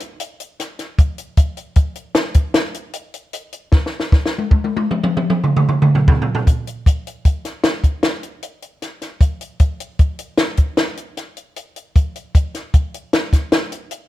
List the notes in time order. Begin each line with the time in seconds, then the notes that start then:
0.00 closed hi-hat
0.20 closed hi-hat
0.40 closed hi-hat
0.60 snare, closed hi-hat
0.79 snare, closed hi-hat
0.99 kick, closed hi-hat
1.18 closed hi-hat
1.37 kick, closed hi-hat
1.57 closed hi-hat
1.76 kick, closed hi-hat
1.95 closed hi-hat
2.15 snare, closed hi-hat
2.34 kick, closed hi-hat
2.54 snare, closed hi-hat
2.74 closed hi-hat
2.93 closed hi-hat
3.14 closed hi-hat
3.33 closed hi-hat
3.52 closed hi-hat
3.72 kick, snare
3.86 snare
4.00 snare
4.12 kick, snare
4.26 snare
4.38 high tom
4.51 kick, high tom
4.64 high tom
4.77 high tom
4.91 mid tom
5.04 mid tom
5.17 mid tom
5.30 mid tom
5.44 mid tom
5.57 mid tom
5.69 mid tom
5.82 mid tom
5.95 floor tom
6.08 kick, floor tom
6.22 floor tom
6.35 floor tom
6.47 kick, closed hi-hat
6.67 closed hi-hat
6.86 kick, closed hi-hat
7.07 closed hi-hat
7.25 kick, closed hi-hat
7.45 snare, closed hi-hat
7.64 snare, closed hi-hat
7.84 kick, closed hi-hat
8.03 snare, closed hi-hat
8.23 closed hi-hat
8.43 closed hi-hat
8.62 closed hi-hat
8.82 snare, closed hi-hat
9.02 snare, closed hi-hat
9.21 kick, closed hi-hat
9.41 closed hi-hat
9.59 kick, closed hi-hat
9.80 closed hi-hat
9.99 kick, closed hi-hat
10.19 closed hi-hat
10.37 snare, closed hi-hat
10.57 kick, closed hi-hat
10.77 snare, closed hi-hat
10.97 closed hi-hat
11.17 snare, closed hi-hat
11.37 closed hi-hat
11.56 closed hi-hat
11.76 closed hi-hat
11.96 kick, closed hi-hat
12.16 closed hi-hat
12.35 kick, closed hi-hat
12.55 snare, closed hi-hat
12.74 kick, closed hi-hat
12.94 closed hi-hat
13.13 snare, closed hi-hat
13.33 kick, snare, closed hi-hat
13.52 snare, closed hi-hat
13.72 closed hi-hat
13.91 closed hi-hat